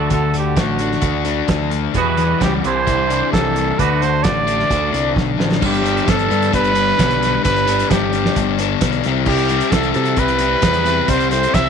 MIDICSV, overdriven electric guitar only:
0, 0, Header, 1, 2, 480
1, 0, Start_track
1, 0, Key_signature, 1, "major"
1, 0, Tempo, 456969
1, 129, Time_signature, 4, 2, 24, 8
1, 12282, End_track
2, 0, Start_track
2, 0, Title_t, "Overdriven electric guitar"
2, 0, Program_c, 0, 29
2, 114, Note_on_c, 0, 50, 67
2, 345, Note_off_c, 0, 50, 0
2, 358, Note_on_c, 0, 50, 63
2, 600, Note_on_c, 0, 57, 66
2, 846, Note_on_c, 0, 62, 65
2, 1066, Note_on_c, 0, 66, 74
2, 1301, Note_off_c, 0, 62, 0
2, 1314, Note_on_c, 0, 62, 67
2, 1532, Note_off_c, 0, 50, 0
2, 1545, Note_on_c, 0, 50, 63
2, 1776, Note_off_c, 0, 57, 0
2, 1789, Note_on_c, 0, 57, 69
2, 2029, Note_off_c, 0, 50, 0
2, 2033, Note_on_c, 0, 52, 69
2, 2046, Note_off_c, 0, 57, 0
2, 2046, Note_off_c, 0, 66, 0
2, 2050, Note_off_c, 0, 62, 0
2, 2271, Note_off_c, 0, 52, 0
2, 2283, Note_on_c, 0, 52, 62
2, 2523, Note_on_c, 0, 55, 70
2, 2766, Note_on_c, 0, 48, 71
2, 2774, Note_off_c, 0, 55, 0
2, 2775, Note_off_c, 0, 52, 0
2, 3012, Note_on_c, 0, 64, 76
2, 3253, Note_on_c, 0, 62, 70
2, 3503, Note_on_c, 0, 52, 70
2, 3751, Note_on_c, 0, 55, 71
2, 3979, Note_off_c, 0, 52, 0
2, 3981, Note_off_c, 0, 48, 0
2, 3983, Note_off_c, 0, 64, 0
2, 3983, Note_on_c, 0, 50, 76
2, 3991, Note_off_c, 0, 55, 0
2, 4214, Note_off_c, 0, 50, 0
2, 4226, Note_on_c, 0, 50, 66
2, 4464, Note_on_c, 0, 57, 68
2, 4691, Note_off_c, 0, 62, 0
2, 4695, Note_on_c, 0, 62, 71
2, 4933, Note_on_c, 0, 66, 76
2, 5156, Note_off_c, 0, 62, 0
2, 5169, Note_on_c, 0, 62, 66
2, 5390, Note_off_c, 0, 50, 0
2, 5403, Note_on_c, 0, 50, 71
2, 5634, Note_off_c, 0, 57, 0
2, 5646, Note_on_c, 0, 57, 68
2, 5878, Note_off_c, 0, 50, 0
2, 5881, Note_on_c, 0, 43, 92
2, 5885, Note_off_c, 0, 62, 0
2, 5890, Note_on_c, 0, 50, 98
2, 5893, Note_off_c, 0, 57, 0
2, 5893, Note_off_c, 0, 66, 0
2, 5897, Note_on_c, 0, 55, 95
2, 5897, Note_on_c, 0, 59, 98
2, 5897, Note_on_c, 0, 62, 93
2, 6109, Note_off_c, 0, 50, 0
2, 6113, Note_off_c, 0, 43, 0
2, 6117, Note_on_c, 0, 43, 78
2, 6122, Note_on_c, 0, 50, 82
2, 6124, Note_off_c, 0, 55, 0
2, 6128, Note_on_c, 0, 55, 83
2, 6132, Note_off_c, 0, 59, 0
2, 6132, Note_off_c, 0, 62, 0
2, 6137, Note_on_c, 0, 59, 89
2, 6137, Note_on_c, 0, 62, 89
2, 6342, Note_off_c, 0, 43, 0
2, 6347, Note_on_c, 0, 43, 81
2, 6351, Note_off_c, 0, 50, 0
2, 6361, Note_off_c, 0, 55, 0
2, 6361, Note_off_c, 0, 59, 0
2, 6363, Note_on_c, 0, 50, 80
2, 6365, Note_on_c, 0, 55, 95
2, 6365, Note_on_c, 0, 59, 91
2, 6368, Note_off_c, 0, 62, 0
2, 6373, Note_on_c, 0, 62, 90
2, 6591, Note_off_c, 0, 43, 0
2, 6596, Note_off_c, 0, 50, 0
2, 6604, Note_off_c, 0, 59, 0
2, 6604, Note_on_c, 0, 43, 102
2, 6607, Note_off_c, 0, 55, 0
2, 6608, Note_off_c, 0, 62, 0
2, 6608, Note_on_c, 0, 50, 107
2, 6611, Note_on_c, 0, 55, 101
2, 6616, Note_on_c, 0, 59, 112
2, 6621, Note_on_c, 0, 62, 104
2, 6823, Note_off_c, 0, 43, 0
2, 6828, Note_off_c, 0, 50, 0
2, 6835, Note_on_c, 0, 43, 74
2, 6839, Note_off_c, 0, 55, 0
2, 6841, Note_off_c, 0, 59, 0
2, 6841, Note_on_c, 0, 50, 79
2, 6844, Note_off_c, 0, 62, 0
2, 6844, Note_on_c, 0, 55, 90
2, 6853, Note_on_c, 0, 59, 85
2, 6856, Note_on_c, 0, 62, 93
2, 7061, Note_off_c, 0, 43, 0
2, 7066, Note_off_c, 0, 50, 0
2, 7073, Note_on_c, 0, 43, 83
2, 7079, Note_on_c, 0, 50, 95
2, 7080, Note_off_c, 0, 59, 0
2, 7080, Note_off_c, 0, 62, 0
2, 7085, Note_off_c, 0, 55, 0
2, 7089, Note_on_c, 0, 55, 88
2, 7092, Note_on_c, 0, 59, 92
2, 7093, Note_on_c, 0, 62, 98
2, 7311, Note_off_c, 0, 43, 0
2, 7315, Note_off_c, 0, 50, 0
2, 7320, Note_off_c, 0, 59, 0
2, 7324, Note_on_c, 0, 43, 94
2, 7327, Note_off_c, 0, 62, 0
2, 7327, Note_on_c, 0, 50, 90
2, 7328, Note_off_c, 0, 55, 0
2, 7332, Note_on_c, 0, 55, 104
2, 7333, Note_on_c, 0, 59, 100
2, 7339, Note_on_c, 0, 62, 102
2, 7548, Note_off_c, 0, 43, 0
2, 7552, Note_off_c, 0, 50, 0
2, 7560, Note_on_c, 0, 43, 81
2, 7562, Note_off_c, 0, 59, 0
2, 7564, Note_on_c, 0, 50, 88
2, 7572, Note_off_c, 0, 55, 0
2, 7573, Note_off_c, 0, 62, 0
2, 7575, Note_on_c, 0, 59, 93
2, 7577, Note_on_c, 0, 55, 86
2, 7586, Note_on_c, 0, 62, 99
2, 7782, Note_off_c, 0, 43, 0
2, 7790, Note_off_c, 0, 50, 0
2, 7794, Note_on_c, 0, 43, 101
2, 7802, Note_on_c, 0, 50, 95
2, 7803, Note_off_c, 0, 59, 0
2, 7804, Note_off_c, 0, 62, 0
2, 7805, Note_off_c, 0, 55, 0
2, 7809, Note_on_c, 0, 55, 94
2, 7815, Note_on_c, 0, 59, 95
2, 7817, Note_on_c, 0, 62, 105
2, 8028, Note_off_c, 0, 43, 0
2, 8035, Note_off_c, 0, 50, 0
2, 8041, Note_on_c, 0, 43, 78
2, 8042, Note_off_c, 0, 59, 0
2, 8044, Note_off_c, 0, 55, 0
2, 8044, Note_off_c, 0, 62, 0
2, 8047, Note_on_c, 0, 50, 76
2, 8049, Note_on_c, 0, 55, 92
2, 8054, Note_on_c, 0, 59, 88
2, 8057, Note_on_c, 0, 62, 86
2, 8283, Note_off_c, 0, 43, 0
2, 8294, Note_off_c, 0, 50, 0
2, 8296, Note_on_c, 0, 43, 91
2, 8299, Note_off_c, 0, 59, 0
2, 8300, Note_off_c, 0, 62, 0
2, 8307, Note_off_c, 0, 55, 0
2, 8307, Note_on_c, 0, 50, 85
2, 8311, Note_on_c, 0, 55, 85
2, 8311, Note_on_c, 0, 59, 82
2, 8313, Note_on_c, 0, 62, 90
2, 8522, Note_off_c, 0, 43, 0
2, 8528, Note_off_c, 0, 50, 0
2, 8535, Note_on_c, 0, 43, 96
2, 8539, Note_off_c, 0, 59, 0
2, 8541, Note_on_c, 0, 50, 107
2, 8542, Note_off_c, 0, 55, 0
2, 8544, Note_off_c, 0, 62, 0
2, 8546, Note_on_c, 0, 55, 95
2, 8551, Note_on_c, 0, 59, 107
2, 8556, Note_on_c, 0, 62, 110
2, 8761, Note_off_c, 0, 43, 0
2, 8763, Note_off_c, 0, 50, 0
2, 8773, Note_off_c, 0, 59, 0
2, 8774, Note_on_c, 0, 43, 85
2, 8776, Note_on_c, 0, 50, 87
2, 8780, Note_off_c, 0, 55, 0
2, 8782, Note_off_c, 0, 62, 0
2, 8784, Note_on_c, 0, 55, 92
2, 8786, Note_on_c, 0, 59, 100
2, 8795, Note_on_c, 0, 62, 95
2, 8997, Note_off_c, 0, 43, 0
2, 9006, Note_off_c, 0, 50, 0
2, 9010, Note_on_c, 0, 43, 93
2, 9018, Note_off_c, 0, 59, 0
2, 9019, Note_on_c, 0, 50, 88
2, 9023, Note_off_c, 0, 62, 0
2, 9024, Note_off_c, 0, 55, 0
2, 9029, Note_on_c, 0, 55, 95
2, 9030, Note_on_c, 0, 59, 98
2, 9036, Note_on_c, 0, 62, 103
2, 9248, Note_off_c, 0, 43, 0
2, 9256, Note_off_c, 0, 50, 0
2, 9260, Note_on_c, 0, 43, 96
2, 9269, Note_off_c, 0, 55, 0
2, 9269, Note_off_c, 0, 59, 0
2, 9269, Note_on_c, 0, 50, 96
2, 9272, Note_off_c, 0, 62, 0
2, 9273, Note_on_c, 0, 55, 98
2, 9281, Note_on_c, 0, 59, 100
2, 9284, Note_on_c, 0, 62, 107
2, 9487, Note_off_c, 0, 43, 0
2, 9491, Note_off_c, 0, 50, 0
2, 9498, Note_off_c, 0, 59, 0
2, 9499, Note_off_c, 0, 62, 0
2, 9507, Note_off_c, 0, 55, 0
2, 9511, Note_on_c, 0, 48, 103
2, 9511, Note_on_c, 0, 55, 114
2, 9514, Note_on_c, 0, 60, 110
2, 9523, Note_on_c, 0, 64, 107
2, 9528, Note_on_c, 0, 67, 103
2, 9733, Note_off_c, 0, 48, 0
2, 9738, Note_on_c, 0, 48, 91
2, 9742, Note_off_c, 0, 55, 0
2, 9744, Note_off_c, 0, 60, 0
2, 9746, Note_on_c, 0, 55, 89
2, 9748, Note_on_c, 0, 60, 96
2, 9749, Note_off_c, 0, 64, 0
2, 9749, Note_off_c, 0, 67, 0
2, 9753, Note_on_c, 0, 64, 106
2, 9754, Note_on_c, 0, 67, 102
2, 9968, Note_off_c, 0, 48, 0
2, 9972, Note_on_c, 0, 48, 82
2, 9975, Note_off_c, 0, 55, 0
2, 9979, Note_off_c, 0, 60, 0
2, 9979, Note_on_c, 0, 55, 90
2, 9983, Note_on_c, 0, 60, 84
2, 9986, Note_off_c, 0, 64, 0
2, 9988, Note_off_c, 0, 67, 0
2, 9990, Note_on_c, 0, 64, 90
2, 9992, Note_on_c, 0, 67, 96
2, 10204, Note_off_c, 0, 48, 0
2, 10209, Note_on_c, 0, 48, 82
2, 10215, Note_off_c, 0, 55, 0
2, 10218, Note_off_c, 0, 60, 0
2, 10219, Note_on_c, 0, 55, 85
2, 10222, Note_on_c, 0, 60, 93
2, 10227, Note_off_c, 0, 67, 0
2, 10228, Note_off_c, 0, 64, 0
2, 10231, Note_on_c, 0, 67, 103
2, 10232, Note_on_c, 0, 64, 89
2, 10442, Note_off_c, 0, 48, 0
2, 10446, Note_on_c, 0, 48, 97
2, 10453, Note_off_c, 0, 55, 0
2, 10457, Note_off_c, 0, 60, 0
2, 10457, Note_on_c, 0, 55, 96
2, 10461, Note_off_c, 0, 64, 0
2, 10461, Note_on_c, 0, 60, 99
2, 10465, Note_on_c, 0, 64, 120
2, 10472, Note_off_c, 0, 67, 0
2, 10476, Note_on_c, 0, 67, 106
2, 10672, Note_off_c, 0, 48, 0
2, 10684, Note_on_c, 0, 48, 79
2, 10685, Note_off_c, 0, 60, 0
2, 10689, Note_off_c, 0, 55, 0
2, 10693, Note_off_c, 0, 64, 0
2, 10693, Note_on_c, 0, 55, 90
2, 10697, Note_on_c, 0, 60, 95
2, 10702, Note_off_c, 0, 67, 0
2, 10706, Note_on_c, 0, 64, 84
2, 10707, Note_on_c, 0, 67, 96
2, 10905, Note_off_c, 0, 48, 0
2, 10918, Note_on_c, 0, 48, 92
2, 10919, Note_off_c, 0, 60, 0
2, 10926, Note_off_c, 0, 55, 0
2, 10926, Note_off_c, 0, 64, 0
2, 10930, Note_on_c, 0, 55, 92
2, 10932, Note_on_c, 0, 60, 96
2, 10937, Note_off_c, 0, 67, 0
2, 10939, Note_on_c, 0, 64, 97
2, 10941, Note_on_c, 0, 67, 95
2, 11138, Note_off_c, 0, 48, 0
2, 11148, Note_off_c, 0, 60, 0
2, 11151, Note_on_c, 0, 48, 99
2, 11156, Note_off_c, 0, 64, 0
2, 11157, Note_off_c, 0, 55, 0
2, 11161, Note_on_c, 0, 55, 101
2, 11161, Note_on_c, 0, 60, 105
2, 11169, Note_on_c, 0, 64, 104
2, 11172, Note_off_c, 0, 67, 0
2, 11176, Note_on_c, 0, 67, 114
2, 11378, Note_off_c, 0, 48, 0
2, 11390, Note_on_c, 0, 48, 90
2, 11391, Note_off_c, 0, 60, 0
2, 11393, Note_off_c, 0, 55, 0
2, 11395, Note_off_c, 0, 64, 0
2, 11397, Note_on_c, 0, 55, 83
2, 11404, Note_on_c, 0, 60, 102
2, 11407, Note_off_c, 0, 67, 0
2, 11408, Note_on_c, 0, 64, 100
2, 11411, Note_on_c, 0, 67, 109
2, 11615, Note_off_c, 0, 48, 0
2, 11627, Note_off_c, 0, 60, 0
2, 11627, Note_on_c, 0, 48, 99
2, 11629, Note_off_c, 0, 55, 0
2, 11631, Note_off_c, 0, 64, 0
2, 11633, Note_on_c, 0, 55, 100
2, 11640, Note_on_c, 0, 60, 90
2, 11643, Note_off_c, 0, 67, 0
2, 11643, Note_on_c, 0, 64, 101
2, 11648, Note_on_c, 0, 67, 102
2, 11866, Note_off_c, 0, 48, 0
2, 11879, Note_on_c, 0, 48, 82
2, 11885, Note_off_c, 0, 60, 0
2, 11887, Note_off_c, 0, 55, 0
2, 11887, Note_off_c, 0, 64, 0
2, 11891, Note_on_c, 0, 55, 81
2, 11897, Note_on_c, 0, 60, 91
2, 11900, Note_off_c, 0, 67, 0
2, 11900, Note_on_c, 0, 64, 96
2, 11904, Note_on_c, 0, 67, 98
2, 12108, Note_off_c, 0, 48, 0
2, 12121, Note_on_c, 0, 48, 89
2, 12123, Note_off_c, 0, 60, 0
2, 12124, Note_off_c, 0, 55, 0
2, 12124, Note_off_c, 0, 64, 0
2, 12128, Note_on_c, 0, 55, 84
2, 12135, Note_off_c, 0, 67, 0
2, 12136, Note_on_c, 0, 60, 88
2, 12136, Note_on_c, 0, 64, 91
2, 12139, Note_on_c, 0, 67, 91
2, 12282, Note_off_c, 0, 48, 0
2, 12282, Note_off_c, 0, 55, 0
2, 12282, Note_off_c, 0, 60, 0
2, 12282, Note_off_c, 0, 64, 0
2, 12282, Note_off_c, 0, 67, 0
2, 12282, End_track
0, 0, End_of_file